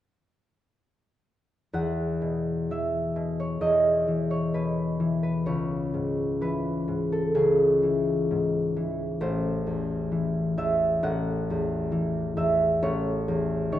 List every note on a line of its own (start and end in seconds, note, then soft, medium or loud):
1.73 3.60 E2 medium
1.73 3.35 F#5 medium
2.22 3.15 B2 soft
2.71 4.06 E3 soft
2.71 6.61 E5 medium
3.16 4.53 B2 soft
3.40 4.30 C#5 medium
3.61 5.50 E2 soft
3.61 4.80 D#5 medium
4.08 4.98 E3 soft
4.31 5.45 C#5 medium
4.54 5.50 B2 soft
4.54 5.22 B4 medium
5.00 5.50 E3 soft
5.23 5.51 B4 medium
5.46 7.33 C#2 soft
5.46 9.25 C#5 medium
5.94 6.87 G#2 soft
6.41 7.82 E3 soft
6.41 7.62 B4 medium
6.88 8.30 G#2 soft
7.12 7.53 A4 medium
7.35 9.25 C#2 soft
7.35 9.25 G#4 medium
7.83 8.75 E3 soft
8.31 9.25 G#2 soft
8.76 9.25 E3 soft
9.21 11.02 A1 medium
9.21 11.08 C5 medium
9.67 10.57 E2 soft
10.12 11.08 E3 soft
10.57 11.08 E2 soft
10.57 12.36 E5 medium
11.03 12.82 A1 medium
11.03 13.79 F#5 medium
11.50 12.35 E2 soft
11.92 12.86 E3 soft
12.37 12.86 E2 soft
12.37 13.79 E5 medium
12.82 13.79 A1 medium
12.82 13.71 C#5 medium
13.28 13.79 E2 soft
13.72 13.79 D#3 soft
13.72 13.79 C#5 medium